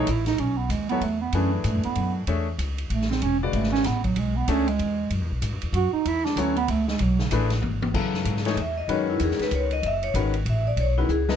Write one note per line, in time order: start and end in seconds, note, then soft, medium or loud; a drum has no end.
0.00 0.11 D#4 loud
0.07 0.38 A1 medium
0.07 0.27 E4 loud
0.07 hi-hat pedal medium
0.07 ride medium
0.26 0.41 D#4 loud
0.26 snare soft
0.26 ride soft
0.38 0.69 B1 medium
0.38 0.59 C#4 medium
0.38 ride medium
0.58 0.72 B3 medium
0.69 1.00 D#2 medium
0.69 0.89 G#3 medium
0.69 hi-hat pedal medium
0.69 ride medium
0.89 1.01 F#3 medium
0.89 1.05 B3 loud
0.89 1.01 B3 medium
0.89 1.01 E4 medium
0.89 1.02 A4 medium
0.89 1.02 C#5 medium
0.89 ride soft
1.01 1.32 E2 medium
1.01 1.21 A3 medium
1.01 ride medium
1.21 1.37 B3 medium
1.32 1.64 F#2 medium
1.32 2.21 E3 medium
1.32 2.21 A3 medium
1.32 1.53 C#4 loud
1.32 2.21 D4 medium
1.32 2.21 G#4 medium
1.32 2.21 B4 medium
1.32 ride medium
1.54 1.68 E3 medium
1.64 1.75 G#2 loud
1.64 1.84 A3 medium
1.64 hi-hat pedal medium
1.64 ride medium
1.75 1.85 F#2 medium
1.83 1.95 E2 medium
1.83 2.14 B3 medium
1.83 ride soft
1.95 2.26 F#2 medium
1.95 ride medium
2.27 2.58 E2 medium
2.27 2.46 A3 medium
2.27 2.45 D4 medium
2.27 2.46 G#4 medium
2.27 2.46 C#5 medium
2.27 2.46 E5 medium
2.27 ride medium
2.58 2.89 C#2 medium
2.58 hi-hat pedal medium
2.58 ride medium
2.78 ride soft
2.90 3.21 A1 medium
2.90 3.09 A3 medium
2.90 ride medium
3.01 snare soft
3.10 3.24 C4 loud
3.10 snare soft
3.22 3.53 E1 medium
3.22 3.40 C#4 loud
3.22 ride medium
3.40 3.83 C#3 medium
3.40 3.55 E3 medium
3.40 3.83 G#3 medium
3.40 3.83 F#4 medium
3.40 3.83 B4 medium
3.40 3.83 D5 medium
3.53 3.84 G#1 medium
3.53 3.72 A3 medium
3.53 ride medium
3.64 snare soft
3.72 3.88 C#4 loud
3.72 snare soft
3.84 4.16 A1 medium
3.84 4.04 B3 loud
3.84 snare soft
3.84 hi-hat pedal medium
3.84 ride medium
4.04 4.20 F#3 medium
4.04 kick medium
4.04 ride medium
4.16 4.47 B1 medium
4.16 4.38 G#3 medium
4.16 ride medium
4.36 4.51 B3 loud
4.48 4.78 C#2 medium
4.48 4.66 A3 medium
4.48 4.70 C#4 loud
4.48 4.66 D4 medium
4.48 4.66 G#4 medium
4.48 4.66 C#5 medium
4.48 4.66 E5 medium
4.48 hi-hat pedal medium
4.48 ride medium
4.68 5.11 G#3 loud
4.68 ride soft
4.79 5.09 E2 medium
4.79 ride medium
5.10 5.21 F#2 medium
5.10 ride medium
5.21 5.30 E2 medium
5.31 5.41 B1 medium
5.42 5.52 G#2 medium
5.42 hi-hat pedal medium
5.42 ride medium
5.52 5.62 F#2 medium
5.62 5.72 E2 medium
5.62 ride soft
5.73 5.91 F#2 medium
5.73 5.92 F#4 loud
5.73 ride medium
5.93 6.09 D#4 loud
5.93 muted upright bass stroke soft
6.05 6.35 E2 medium
6.05 6.26 E4 loud
6.05 ride medium
6.25 6.41 D4 loud
6.25 snare soft
6.36 6.67 D2 medium
6.36 6.55 F#3 medium
6.36 6.55 B3 medium
6.36 6.56 C#4 loud
6.36 6.55 E4 medium
6.36 6.55 A4 medium
6.36 6.55 C#5 medium
6.36 hi-hat pedal medium
6.36 ride medium
6.56 6.72 B3 loud
6.56 ride soft
6.68 6.99 C#2 loud
6.68 6.88 A3 loud
6.68 ride medium
6.88 7.03 G#3 medium
6.88 snare medium
6.99 7.30 B1 medium
6.99 7.19 F#3 medium
6.99 ride medium
7.19 7.27 C#3 medium
7.19 snare medium
7.31 7.61 A1 loud
7.31 7.49 E3 medium
7.31 7.49 A3 medium
7.31 7.50 D4 medium
7.31 7.50 G#4 medium
7.31 7.50 B4 medium
7.31 hi-hat pedal medium
7.31 ride medium
7.50 snare soft
7.50 ride medium
7.62 7.93 G#1 loud
7.62 high tom medium
7.82 high tom medium
7.94 8.25 F#2 medium
7.94 8.41 C#3 medium
7.94 8.41 F#3 medium
7.94 8.41 B3 medium
7.94 8.41 E4 medium
7.94 8.42 A4 medium
7.94 kick medium
7.94 crash medium
8.14 snare soft
8.25 8.56 G#2 medium
8.25 hi-hat pedal medium
8.25 ride medium
8.37 snare soft
8.45 8.56 E3 medium
8.45 8.56 A3 medium
8.45 8.56 D#4 medium
8.45 8.57 G#4 medium
8.45 8.56 C#5 medium
8.45 snare soft
8.45 ride soft
8.56 8.87 E2 medium
8.56 ride medium
8.61 8.78 E5 medium
8.78 8.89 D#5 medium
8.88 9.19 F#2 medium
8.88 9.76 D#3 medium
8.88 9.76 G#3 medium
8.88 9.76 C#4 medium
8.88 9.76 F#4 medium
8.88 9.76 B4 medium
8.88 9.09 C#5 medium
8.88 ride medium
9.10 9.21 E4 medium
9.20 9.38 E2 medium
9.20 hi-hat pedal medium
9.20 ride medium
9.24 9.41 G#4 medium
9.31 snare soft
9.39 9.52 B4 medium
9.39 muted upright bass stroke soft
9.39 snare soft
9.39 ride soft
9.51 9.82 C#2 medium
9.51 9.72 C#5 medium
9.51 hi-hat pedal medium
9.51 ride medium
9.71 9.83 D#5 loud
9.71 ride soft
9.83 10.13 F#1 medium
9.83 10.04 E5 loud
9.83 ride medium
10.03 10.11 C#5 loud
10.03 ride soft
10.14 10.45 G#1 loud
10.14 10.32 D#3 medium
10.14 10.33 G#3 medium
10.14 10.33 C#4 medium
10.14 10.33 F#4 medium
10.14 10.33 B4 medium
10.14 hi-hat pedal medium
10.14 ride medium
10.34 ride soft
10.45 10.76 A1 medium
10.45 ride medium
10.50 10.67 E5 medium
10.67 10.78 D5 medium
10.76 11.07 B1 medium
10.76 10.98 C#5 medium
10.76 ride medium
10.97 11.08 D#3 medium
10.97 11.08 G#3 medium
10.97 11.08 C#4 medium
10.97 11.09 E4 medium
10.97 11.08 F#4 medium
10.97 11.08 B4 medium
11.09 11.36 C#2 medium
11.09 11.29 G#4 medium
11.09 hi-hat pedal medium
11.28 11.36 F#3 medium
11.28 11.36 B3 medium
11.28 11.36 E4 medium
11.28 11.36 A4 medium
11.28 11.36 B4 medium
11.28 11.36 D#5 medium
11.28 snare medium